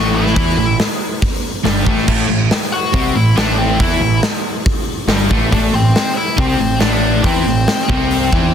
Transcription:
Already playing: picked electric bass A1, overdriven electric guitar A2 A3, lead electric guitar F#4 F#5
0.15 lead electric guitar E4 E5
0.26 snare
0.36 picked electric bass E2, overdriven electric guitar E3 E4, kick, open hi-hat
0.57 picked electric bass A1, overdriven electric guitar A2
0.80 snare, open hi-hat
1.22 kick, open hi-hat
1.64 picked electric bass G1, overdriven electric guitar G2 G3, snare, open hi-hat
1.85 picked electric bass A1, overdriven electric guitar A2 A3, kick
1.97 snare
2.06 picked electric bass A1, overdriven electric guitar A2 A3, kick, crash
2.28 picked electric bass A1, overdriven electric guitar A2
2.51 snare, open hi-hat
2.63 snare
2.73 lead electric guitar F#4 F#5
2.94 picked electric bass C2, overdriven electric guitar C3 C4, kick, open hi-hat
3.14 picked electric bass A1, overdriven electric guitar A2, lead electric guitar E4 E5
3.36 picked electric bass A1, overdriven electric guitar A2 A3, lead electric guitar D4 D5, snare, open hi-hat
3.57 lead electric guitar C4 C5
3.79 picked electric bass E2, overdriven electric guitar E3 E4, lead electric guitar E4 E5, kick, open hi-hat
4.00 picked electric bass A1, overdriven electric guitar A2
4.23 snare, open hi-hat
4.66 kick, open hi-hat
5.08 picked electric bass G1, overdriven electric guitar G2 G3, snare, open hi-hat
5.30 picked electric bass A1, overdriven electric guitar A2 A3, kick
5.51 picked electric bass A1, overdriven electric guitar A2 A3, lead electric guitar D4 D5, kick, open hi-hat
5.73 picked electric bass A1, overdriven electric guitar A2, lead electric guitar C4 C5
5.96 snare, open hi-hat
6.17 lead electric guitar E4 E5
6.37 picked electric bass C2, overdriven electric guitar C3 C4, lead electric guitar C4 C5, kick
6.59 picked electric bass A1, overdriven electric guitar A2
6.80 picked electric bass A1, overdriven electric guitar A2 A3, lead electric guitar D4 D5, snare, open hi-hat
7.23 picked electric bass E2, overdriven electric guitar E3 E4, lead electric guitar C4 C5, kick, open hi-hat
7.45 picked electric bass A1, overdriven electric guitar A2
7.68 snare, open hi-hat
7.79 snare
7.88 picked electric bass C2, overdriven electric guitar C3 C4, kick
8.11 open hi-hat
8.31 picked electric bass E2, overdriven electric guitar E3 E4, kick

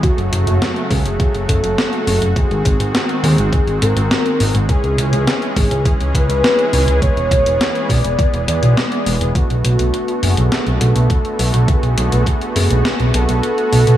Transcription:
0.03 supersaw synth C#3 F#3 A3 F#4, soft synth lead F#4, kick, closed hi-hat
0.18 analog synth bass F#1, closed hi-hat
0.32 analog synth bass F#1, closed hi-hat
0.47 analog synth bass F#1, closed hi-hat
0.62 snare, closed hi-hat
0.76 closed hi-hat
0.90 analog synth bass C#2, soft synth lead G#4, kick, open hi-hat
1.05 analog synth bass F#1, closed hi-hat
1.20 kick, closed hi-hat
1.35 analog synth bass F#1, closed hi-hat
1.49 analog synth bass F#1, soft synth lead A4, kick, closed hi-hat
1.64 analog synth bass F#1, closed hi-hat
1.78 snare, closed hi-hat
1.93 closed hi-hat
2.07 analog synth bass F#1, open hi-hat
2.22 analog synth bass F#1, closed hi-hat
2.36 supersaw synth D#3 G#3 C4, soft synth lead G#4, kick, closed hi-hat
2.51 analog synth bass G#1, closed hi-hat
2.65 analog synth bass G#1, kick, closed hi-hat
2.80 analog synth bass G#1, closed hi-hat
2.95 snare, closed hi-hat
3.09 closed hi-hat
3.23 analog synth bass D#2, soft synth lead G#4, open hi-hat
3.38 analog synth bass G#1, closed hi-hat
3.53 kick, closed hi-hat
3.67 analog synth bass G#1, closed hi-hat
3.82 analog synth bass G#1, soft synth lead A#4, closed hi-hat
3.97 analog synth bass G#1, closed hi-hat
4.11 snare, closed hi-hat
4.26 closed hi-hat
4.40 analog synth bass G#1, open hi-hat
4.55 analog synth bass G#1, closed hi-hat
4.69 supersaw synth E3 C#4 G#4, soft synth lead G#4, kick, closed hi-hat
4.84 analog synth bass C#2, closed hi-hat
4.98 analog synth bass C#2, closed hi-hat
5.13 analog synth bass C#2, closed hi-hat
5.27 snare, closed hi-hat
5.42 closed hi-hat
5.56 analog synth bass G#1, soft synth lead G#4, kick, open hi-hat
5.71 analog synth bass C#2, closed hi-hat
5.86 kick, closed hi-hat
6.01 analog synth bass C#2, closed hi-hat
6.15 analog synth bass C#2, soft synth lead B4, kick, closed hi-hat
6.29 analog synth bass C#2, closed hi-hat
6.44 snare, closed hi-hat
6.59 closed hi-hat
6.73 analog synth bass C#2, open hi-hat
6.88 analog synth bass C#2, closed hi-hat
7.02 supersaw synth B3, soft synth lead C#5, kick, closed hi-hat
7.17 analog synth bass E1, closed hi-hat
7.31 analog synth bass E1, kick, closed hi-hat
7.46 analog synth bass E1, closed hi-hat
7.61 snare, closed hi-hat
7.75 closed hi-hat
7.90 analog synth bass B1, soft synth lead D5, kick, open hi-hat
8.04 analog synth bass E1, closed hi-hat
8.19 kick, closed hi-hat
8.33 analog synth bass E1, closed hi-hat
8.48 analog synth bass E2, soft synth lead D5, closed hi-hat
8.63 analog synth bass B1, closed hi-hat
8.77 snare, closed hi-hat
8.92 closed hi-hat
9.06 analog synth bass E1, open hi-hat
9.21 analog synth bass E1, closed hi-hat
9.35 supersaw synth D3 A3 B3 F#4, soft synth lead F#4, kick, closed hi-hat
9.50 analog synth bass B1, closed hi-hat
9.64 analog synth bass B1, closed hi-hat
9.79 analog synth bass B1, closed hi-hat
9.94 closed hi-hat
10.08 closed hi-hat
10.23 analog synth bass F#1, soft synth lead G#4, open hi-hat
10.37 analog synth bass B1, closed hi-hat
10.52 snare, closed hi-hat
10.66 analog synth bass B1, closed hi-hat
10.81 analog synth bass B1, soft synth lead A4, closed hi-hat
10.96 analog synth bass B1, closed hi-hat
11.10 kick, closed hi-hat
11.25 closed hi-hat
11.39 analog synth bass B1, open hi-hat
11.54 analog synth bass B1, closed hi-hat
11.68 soft synth lead G#4, kick, closed hi-hat
11.83 analog synth bass B1, closed hi-hat
11.98 analog synth bass B1, closed hi-hat
12.12 analog synth bass B1, closed hi-hat
12.26 kick, closed hi-hat
12.41 closed hi-hat
12.55 analog synth bass F#1, soft synth lead G#4, open hi-hat
12.71 analog synth bass B1, closed hi-hat
12.85 snare, closed hi-hat
13.00 analog synth bass B1, closed hi-hat
13.14 analog synth bass B1, soft synth lead A4, closed hi-hat
13.29 analog synth bass B1, closed hi-hat
13.43 closed hi-hat
13.58 closed hi-hat
13.72 analog synth bass B1, open hi-hat
13.87 analog synth bass B1, closed hi-hat

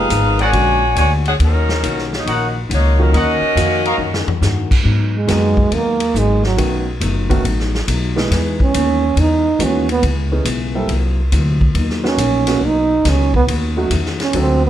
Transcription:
Already playing: grand piano B3 D#4, saxophone section D#4 G#4 B4 F5
0.10 upright bass G#1, hollow-body jazz guitar F3 B3 D#4 G#4, kick, hi-hat pedal, ride
0.39 saxophone section F#4 C#5 D5 G#5, trumpet section G#4 A#4 D5 F#5, ride
0.53 upright bass A#1, hollow-body jazz guitar A#2 G#3 D4 F#4, grand piano D3 G#3 A#3 C#4 F#4, kick, ride
0.96 upright bass D2, hollow-body jazz guitar A#2 G#3, saxophone section F#4 C#5 D5 G#5, kick, hi-hat pedal, ride
1.00 hollow-body jazz guitar D4 F#4
1.25 saxophone section D4 G#4 C#5 F#5, ride
1.40 upright bass D#2, hollow-body jazz guitar D#3 A#3 C#4, saxophone section F#3 C#4 D#4 A#4, kick, ride
1.44 hollow-body jazz guitar F#4
1.69 snare
1.83 upright bass B1, hollow-body jazz guitar D#3 A#3 C#4 F#4, kick, hi-hat pedal, ride
1.98 snare
2.13 saxophone section D#4 C#5, snare
2.17 saxophone section A#3 F#4
2.26 upright bass A#1, hollow-body jazz guitar D#3 A#3 C#4 F#4, trumpet section A#4 C#5 D#5 F#5, kick, ride
2.69 upright bass C#2, hollow-body jazz guitar D#3 A#3 C#4 F#4, kick, hi-hat pedal, ride
2.73 saxophone section A#3 D#4 F#4 C#5
2.99 grand piano D#3 F#3 A#3 C#4 F4, saxophone section F#3 C#4 D#4 A#4
3.12 upright bass D#2, hollow-body jazz guitar D#3 A#3 C#4 F#4, saxophone section C#4 F#4 A#4 D#5, trumpet section A#4 C#5 D#5 F#5, kick, ride
3.41 muted upright bass stroke
3.56 upright bass F2, hollow-body jazz guitar D#3 A#3 C#4 F#4, grand piano D#3 A#3 C#4 F#4 F5, kick, hi-hat pedal, ride
3.85 trumpet section A#4 C#5 D#5 F5, ride
3.98 upright bass F#2, hollow-body jazz guitar D#3 A#3 C#4
4.02 hollow-body jazz guitar F#4
4.14 snare
4.27 muted upright bass stroke, floor tom
4.41 upright bass G2, hollow-body jazz guitar D#3 A#3 C#4 F#4, snare, hi-hat pedal
4.71 kick, crash
4.83 hollow-body jazz guitar G#2 F#3 B3 D#4, upright bass G#2, kick
5.17 trombone G#3
5.26 upright bass F#2, hollow-body jazz guitar G#2 F#3 B3 D#4, grand piano D#3 G#3 A#3 B3 F#4, kick, snare, hi-hat pedal, ride
5.57 kick
5.70 upright bass D#2, hollow-body jazz guitar G#2 F#3 B3 D#4, kick, ride
5.75 trombone A#3
6.00 ride
6.13 upright bass G#1, hollow-body jazz guitar G#2 F#3 B3 D#4, kick, hi-hat pedal
6.18 trombone G#3
6.44 trombone F#3, snare
6.57 upright bass B1, hollow-body jazz guitar B2 F#3 A3 D#4, grand piano D#3 A3 B3 C#4 F#4, kick, ride
7.00 upright bass F#1, hollow-body jazz guitar B2 F#3 A3 D#4, kick, hi-hat pedal, ride
7.29 grand piano D#3 A3 B3 C#4 F#4, kick, ride
7.44 upright bass A1, hollow-body jazz guitar B2 F#3 A3 D#4, kick, ride
7.60 snare
7.75 snare
7.88 upright bass B1, hollow-body jazz guitar B2 F#3 A3 D#4, kick, hi-hat pedal, ride
8.16 grand piano E3 G#3 B3 D#4 G#4, snare
8.30 upright bass E2, hollow-body jazz guitar E3 G#3 B3 D#4, kick, snare, ride
8.60 trombone C#4, kick
8.74 upright bass D#2, hollow-body jazz guitar E3 G#3 B3 D#4, kick, hi-hat pedal, ride
9.16 upright bass E2, hollow-body jazz guitar E3 G#3 B3 D#4, trombone D#4, kick, ride
9.59 upright bass D#2, hollow-body jazz guitar E3 G#3 B3 D#4, grand piano E3 G#3 B3 D#4 F#4, kick, hi-hat pedal, ride
9.64 trombone C#4
9.89 trombone B3, ride
10.02 upright bass C#2, hollow-body jazz guitar C#3 G#3 B3 E4, kick, ride
10.32 grand piano E3 B3 C#4 D#4 G#4
10.45 upright bass B1, hollow-body jazz guitar C#3 G#3 B3 E4, kick, hi-hat pedal, ride
10.75 grand piano G3 A#3 C4 E4 A4
10.88 upright bass C2, hollow-body jazz guitar C3 F#3 A#3, kick, ride
10.92 hollow-body jazz guitar E4
11.32 upright bass D2, hollow-body jazz guitar C3 F#3 A#3 E4, kick, hi-hat pedal, ride
11.61 kick
11.75 upright bass D#2, hollow-body jazz guitar B2 F#3 A#3, kick, ride
11.79 hollow-body jazz guitar D#4
11.90 snare
12.03 grand piano A#3 B3 C#4 D#4 F#4, trombone C#4, snare
12.18 upright bass A#1, hollow-body jazz guitar B2 F#3 A#3 D#4, kick, hi-hat pedal, ride
12.47 grand piano A#3 B3 C#4 D#4 F#4, snare, ride
12.61 upright bass B1, hollow-body jazz guitar B2 F#3 A#3 D#4, kick
12.66 trombone D#4
13.05 upright bass C#2, hollow-body jazz guitar B2 F#3 A#3 D#4, kick, snare, hi-hat pedal, ride
13.09 trombone C#4
13.34 trombone B3, kick
13.48 upright bass D#2, hollow-body jazz guitar D#3 A3 C#4 F#4, kick, ride
13.77 grand piano F#3 A3 C#4 D#4 F#4
13.90 upright bass E2, hollow-body jazz guitar D#3 A3 C#4 F#4, kick, hi-hat pedal, ride
14.06 snare
14.20 trombone C#4, snare, ride
14.33 upright bass D2, hollow-body jazz guitar D3 G#3 C4, grand piano F#3 A3 C4 D4 A4, kick, ride
14.37 trombone C4, hollow-body jazz guitar F#4
14.66 trombone B3

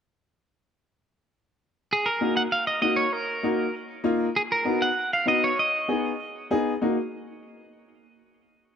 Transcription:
1.93 clean electric guitar G#4
2.06 clean electric guitar A#4
2.21 upright piano A#3 D#4 F#4
2.37 clean electric guitar F#5
2.52 clean electric guitar F5
2.67 clean electric guitar D#5
2.82 upright piano A#3 D#4 F#4, clean electric guitar D#5
2.96 clean electric guitar C#5
3.13 clean electric guitar A#4
3.43 upright piano A#3 D#4 F#4
4.04 upright piano A#3 D#4 F4
4.36 clean electric guitar G#4
4.52 clean electric guitar A#4
4.65 upright piano B3 D#4 F#4
4.82 clean electric guitar F#5
5.13 clean electric guitar F5
5.26 upright piano B3 D#4 F#4, clean electric guitar D#5
5.44 clean electric guitar C#5
5.59 clean electric guitar D#5
5.88 upright piano B3 D#4 G#4
6.51 upright piano B3 D#4 G#4
6.81 upright piano A#3 D#4 F#4

